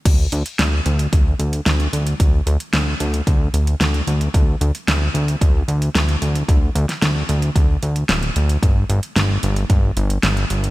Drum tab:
CC |x---------------|----------------|----------------|----------------|
HH |x-xxx-xxx-xxxxxx|x-xxx-xxx-xxxxxx|x-xxx-xxx-xxxxxx|x-xxx-xxx-xxxxxx|
SD |----o-------o---|----o-------o---|----o-------o---|---oo-------o---|
BD |o-------o-------|o-------o-------|o-------o-------|o-------o-------|

CC |----------------|
HH |x-xxx-xxx-xxxxxx|
SD |----o-------o---|
BD |o-------o-------|